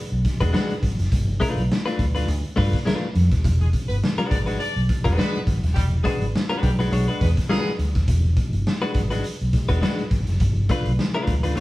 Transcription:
0.12 fingered electric bass B1
0.25 kick, snare, closed hi-hat
0.40 fingered electric bass E1, clean electric guitar G#3 D4 F#4 B4, kick, snare, closed hi-hat
0.53 clean electric guitar G#3 D4 F#4 B4, snare
0.70 closed hi-hat
0.82 fingered electric bass G#1, kick, closed hi-hat
0.99 fingered electric bass F#1, snare, closed hi-hat
1.12 fingered electric bass G1, kick, closed hi-hat
1.29 closed hi-hat
1.40 clean electric guitar A3 D4 F4 B4, kick, closed hi-hat
1.57 fingered electric bass B1, closed hi-hat
1.72 snare
1.85 clean electric guitar A3 D4 F4 B4, closed hi-hat
1.99 fingered electric bass D2, kick, closed hi-hat
2.15 clean electric guitar A3 D4 F4 B4, snare, closed hi-hat
2.28 fingered electric bass D2, closed hi-hat
2.44 closed hi-hat
2.56 fingered electric bass G2, clean electric guitar A3 D4 F4 B4, kick, snare, open hi-hat
2.73 kick, snare, closed hi-hat
2.85 clean electric guitar A3 D4 F4 B4, snare
3.15 fingered electric bass F2, closed hi-hat
3.32 fingered electric bass D#1, kick, snare, closed hi-hat
3.44 fingered electric bass E1, kick, closed hi-hat
3.60 horn section G#3 G#4, closed hi-hat
3.73 kick, closed hi-hat
3.88 fingered electric bass G1, horn section B3 B4, closed hi-hat
4.04 snare
4.18 clean electric guitar G#3 D4 F#4 B4, closed hi-hat
4.30 fingered electric bass G#1, horn section D4 D5, kick, closed hi-hat
4.46 clean electric guitar G#3 D4 F#4 B4, snare, closed hi-hat
4.59 horn section D4 D5, closed hi-hat
4.76 fingered electric bass B1, closed hi-hat
4.89 kick, closed hi-hat
5.04 fingered electric bass E1, clean electric guitar G#3 D4 F#4 B4, kick, snare, closed hi-hat
5.16 clean electric guitar G#3 D4 F#4 B4, horn section B3 B4, snare
5.35 closed hi-hat
5.47 fingered electric bass G#1, kick, closed hi-hat
5.63 fingered electric bass D#1, snare, closed hi-hat
5.74 fingered electric bass E1, horn section G3 G4, kick, closed hi-hat
6.03 horn section G#3 G#4, clean electric guitar G#3 D4 F#4 B4, kick, closed hi-hat
6.21 fingered electric bass G#1, closed hi-hat
6.36 snare
6.49 clean electric guitar G#3 D4 F#4 B4, horn section B3 B4, closed hi-hat
6.62 fingered electric bass B1, horn section G3 G4, kick, closed hi-hat
6.79 clean electric guitar G#3 D4 F#4 B4, snare, closed hi-hat
6.91 fingered electric bass B1, clean electric guitar G#3 D4 F#4 C#5, closed hi-hat
7.08 clean electric guitar G#3 D4 F#4 B4, closed hi-hat
7.20 fingered electric bass E2, horn section B3 B4, kick, snare, closed hi-hat
7.37 kick, snare, closed hi-hat
7.49 horn section G#3 G#4, clean electric guitar G#3 D4 F#4 B4, snare
7.66 closed hi-hat
7.79 fingered electric bass D2, closed hi-hat
7.95 fingered electric bass D#1, kick, snare, closed hi-hat
8.08 fingered electric bass E1, kick, closed hi-hat
8.24 closed hi-hat
8.37 kick, closed hi-hat
8.53 fingered electric bass G1, closed hi-hat
8.67 snare
8.82 clean electric guitar G#3 D4 F#4 B4, closed hi-hat
8.94 fingered electric bass G#1, kick, closed hi-hat
9.10 clean electric guitar G#3 D4 F#4 B4, snare, closed hi-hat
9.24 closed hi-hat
9.41 fingered electric bass B1, closed hi-hat
9.53 kick, snare, closed hi-hat
9.69 fingered electric bass E1, clean electric guitar G#3 D4 F#4 B4, kick, snare, closed hi-hat
9.81 clean electric guitar G#3 D4 F#4 B4, snare
9.98 closed hi-hat
10.11 fingered electric bass G#1, kick, closed hi-hat
10.27 fingered electric bass F#1, snare, closed hi-hat
10.40 fingered electric bass G1, kick, closed hi-hat
10.56 closed hi-hat
10.69 clean electric guitar A3 D4 F4 B4, kick, closed hi-hat
10.85 fingered electric bass B1, closed hi-hat
10.99 snare
11.14 clean electric guitar A3 D4 F4 B4
11.27 fingered electric bass D2, kick, closed hi-hat
11.43 clean electric guitar A3 D4 F4 B4, snare, closed hi-hat
11.55 clean electric guitar A3 D4 F4, closed hi-hat

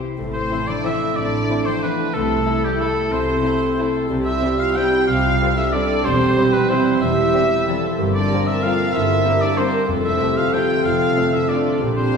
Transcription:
Already playing: harp C3 G3 C4 G4 C5
0.03 harp E4
0.18 double bass section A1, harp A2, cello section A2, bassoon A3, viola section C4, clarinet E4
0.33 french horn section C4, harp A4, oboe C5, violin section C5
0.51 harp E3, violin section C4 E4, viola section E4
0.67 harp F3, french horn section D4, oboe D5, violin section D5
0.85 harp E3, violin section C4 E4 E5, viola section C4, french horn section E4, oboe E5
1.02 harp A4
1.16 double bass section A1, cello section A2, harp A2, french horn section D4, oboe D5, violin section D5
1.34 harp E4
1.49 harp E3, violin section C4 E4, viola section D4
1.65 harp F3, french horn section C4, violin section C5, oboe C5
1.82 harp E3, french horn section B3, violin section C4 E4 B4, oboe B4
1.99 harp A4
2.13 double bass section C2, cello section C3, harp C3, bassoon A3, french horn section A3, viola section C4, clarinet E4, violin section A4, oboe A4
2.30 harp A4
2.46 violin section A3 E4, harp A3, viola section E4
2.64 french horn section G3, harp B3, oboe G4, violin section G4
2.80 french horn section A3, harp A3, violin section A3 E4 A4, oboe A4
2.97 harp A4
3.12 double bass section C2, cello section C3, harp C3, french horn section C4, viola section C4, violin section C5, oboe C5
3.28 harp E4
3.44 violin section A3 E4, harp A3, viola section E4
3.63 harp B3
3.78 harp A3, violin section A3 E4, viola section A4
3.96 harp A4
4.09 double bass section C2, cello section C3, harp C3, bassoon G3, clarinet C4, viola section G4
4.25 french horn section E4, harp C5, violin section E5, oboe E5
4.42 violin section G3 C4, harp G3
4.58 harp A3, french horn section F4, violin section F5, oboe F5
4.76 harp G3, violin section G3 C4 G5, viola section E4, french horn section G4, oboe G5
4.93 harp C5
5.07 double bass section C2, harp C3, cello section C3, french horn section F4, viola section G4, oboe F5, violin section F5
5.25 harp G4
5.40 violin section G3 C4, harp G3, viola section A4
5.56 harp A3, french horn section E4, oboe E5, violin section E5
5.73 violin section G3 C4 D5, harp G3, french horn section D4, oboe D5
5.91 harp C5
6.04 double bass section E1, cello section E2, harp E2, bassoon G3, french horn section C4, clarinet C4, viola section G4, oboe C5, violin section C5
6.22 harp C5
6.37 harp E3, violin section G3 C4
6.53 harp F3, french horn section B3, oboe B4, violin section B4
6.69 harp E3, violin section G3 C4 C5, french horn section C4, viola section E4, oboe C5
6.88 harp C5
7.02 double bass section E1, cello section E2, harp E2, french horn section E4, viola section G4, oboe E5, violin section E5
7.19 harp G4
7.35 harp E3, violin section G3 C4
7.53 harp F3
7.68 harp E3, violin section G3 C4, viola section A4
7.85 harp C5
7.99 double bass section G1, cello section G2, harp G2, bassoon A#3, clarinet C4, viola section G4
8.14 french horn section D4, harp C5, oboe D5, violin section D5
8.31 harp G3, violin section A#3 C4, viola section A#4
8.47 harp A3, french horn section E4, oboe E5, violin section E5
8.63 harp G3, violin section A#3 C4 F5, french horn section F4, viola section A4, oboe F5
8.80 harp C5
8.94 double bass section G1, harp G2, cello section G2, french horn section E4, oboe E5, violin section E5
9.10 harp A#4
9.25 harp G3, violin section A#3 C4, viola section G4
9.41 harp A3, french horn section D4, oboe D5, violin section D5
9.58 harp G3, violin section A#3 C4 C5, french horn section C4, viola section A#4, oboe C5
9.74 harp C5
9.89 double bass section F1, timpani F2, cello section F2, harp F2, bassoon A3, clarinet C4, viola section A4
10.04 french horn section E4, harp C5, oboe E5, violin section E5
10.21 harp C3, violin section A3 C4, viola section G4
10.36 harp D3, french horn section F4, oboe F5, violin section F5
10.53 harp C3, violin section A3 C4 G5, viola section F4, french horn section G4, oboe G5
10.71 harp C5
10.84 double bass section F1, cello section F2, harp F2, french horn section F4, viola section A4, oboe F5, violin section F5
11.01 harp A4
11.16 harp C3, violin section A3 C4
11.32 harp D3, french horn section E4, oboe E5, violin section E5
11.49 harp C3, violin section A3 C4 D5, french horn section D4, viola section F4, oboe D5
11.67 harp C5
11.81 double bass section A#1, harp A#2, cello section A#2, bassoon G3, clarinet D4, viola section G4
11.96 french horn section C4, harp A#4, oboe C5, violin section C5
12.13 violin section G3 D4, viola section F4

